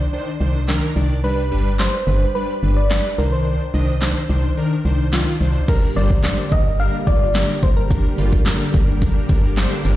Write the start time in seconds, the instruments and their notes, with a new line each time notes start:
Already playing: soft synth lead D5
0.13 analog polysynth D#3 D4 C5
0.40 fm bass C2, analog polysynth D#3 D4 C5
0.68 analog polysynth D#3 D4 A#4, snare, clap
0.96 fm bass C2, analog polysynth D#3 D4 D5
1.23 analog polysynth G3 D4 B4, soft synth lead B4
1.51 fm bass G1, analog polysynth G3 D4 B4
1.79 analog polysynth G3 D4 B4, soft synth lead C5, snare, clap
2.07 fm bass G1, analog polysynth G3 D4 B4
2.35 analog polysynth G3 D4 B4, soft synth lead B4
2.63 fm bass G1, analog polysynth G3 D4 B4
2.77 soft synth lead D5
2.90 analog polysynth G3 D4 B4, snare, clap
3.18 fm bass C2, analog polysynth D#3 D4 C5, soft synth lead A#4
3.32 soft synth lead C5
3.74 fm bass C2, analog polysynth D#3 D4 D#5
4.01 analog polysynth D#3 D4 C5, snare, clap
4.29 fm bass C2, analog polysynth D#3 D4 C5
4.57 analog polysynth D#3 D4 A#4
4.85 fm bass C2, analog polysynth D#3 D4 C5
5.13 analog polysynth D#3 D4 F4, snare, clap
5.40 fm bass C2, analog polysynth D#3 D4 C5
5.68 string machine D3 G3 A#3 G4, analog polysynth G3 D4 A#4, soft synth lead A#4, kick, crash
5.96 fm bass G1, analog polysynth G3 D4 C5, soft synth lead D5
6.10 kick
6.24 analog polysynth G3 D4 C5, snare, clap
6.51 fm bass G1, analog polysynth G3 D4 A#4, soft synth lead D#5, kick
6.79 analog polysynth G3 D4 A#4, soft synth lead F5
7.07 fm bass G1, analog polysynth G3 D4 F4, soft synth lead D5, kick
7.35 analog polysynth G3 D4 A#4, snare, clap
7.63 fm bass G1, analog polysynth G3 D4 A#4, soft synth lead C5, kick
7.77 soft synth lead A#4
7.90 analog polysynth G3 D4 A#4, kick, closed hi-hat
8.18 fm bass G1, analog polysynth G3 D4 F4, closed hi-hat
8.33 kick
8.46 analog polysynth G3 D4 A#4, snare, clap, closed hi-hat
8.74 fm bass G1, analog polysynth G3 D4 A#4, kick, closed hi-hat
9.01 analog polysynth G3 D4 A#4, kick, closed hi-hat
9.29 fm bass G1, analog polysynth G3 D4 A#4, kick, closed hi-hat
9.57 analog polysynth G3 D4 C5, snare, clap, closed hi-hat
9.85 fm bass G1, analog polysynth G3 D4 A#4, closed hi-hat